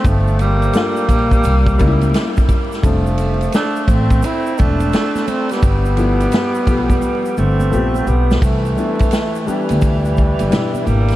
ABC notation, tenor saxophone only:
X:1
M:4/4
L:1/16
Q:"Swing 16ths" 1/4=86
K:C
V:1 name="Tenor saxophone" clef=bass
F,2 G,12 z2 | F,4 A,2 A,2 C2 A,4 A, G,- | G,8- G,2 A,4 G,2 | E,6 E,8 G,2 |]